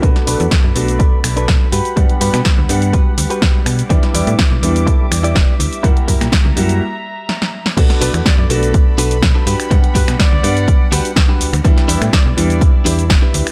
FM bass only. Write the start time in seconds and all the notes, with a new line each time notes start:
0.03 B1
0.27 B1
0.40 E2
0.64 F#2
0.76 B1
1.24 B1
1.48 B2
1.72 G2
1.97 G2
2.21 G2
2.33 B2
2.58 D2
2.69 G2
3.18 D2
3.66 B2
3.90 E2
4.14 E2
4.27 A2
4.51 B1
4.63 E2
5.11 E2
5.35 E1
5.60 D2
5.84 F#2
6.08 F#2
6.21 A#2
6.45 C#2
6.57 F#2
7.77 B1
8.01 B1
8.14 E2
8.38 F#2
8.50 B1
8.98 B1
9.22 B2
9.47 G2
9.71 G2
9.95 G2
10.08 B2
10.32 D2
10.43 G2
10.92 D2
11.40 D2
11.53 D2
11.65 E2
11.89 E2
12.01 A2
12.26 B1
12.37 E2
12.86 E2
13.10 E1
13.34 D2